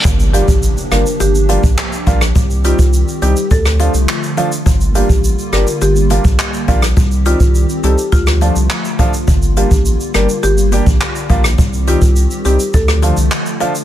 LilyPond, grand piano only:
\new Staff \with { instrumentName = "Grand piano" } { \time 4/4 \key g \minor \tempo 4 = 104 r8 <g bes d' f'>8 r8 <g bes d' f'>8 r8 <g bes d' f'>8 r8 <g bes d' f'>8 | r8 <g c' ees' g'>8 r8 <g c' ees' g'>8 r8 <f a d' f'>8 r8 <f a d' f'>8 | r8 <g bes d' f'>8 r8 <g bes d' g'>8 r8 <g bes d' f'>8 r8 <g bes d' f'>8 | r8 <g c' ees' g'>8 r8 <g c' ees' a'>8 r8 <f a d' f'>8 r8 <f a d' f'>8 |
r8 <g bes d' f'>8 r8 <g bes d' g'>8 r8 <g bes d' g'>8 r8 <g bes d' f'>8 | r8 <g c' ees' g'>8 r8 <g c' ees' g'>8 r8 <f a d' f'>8 r8 <f a d' f'>8 | }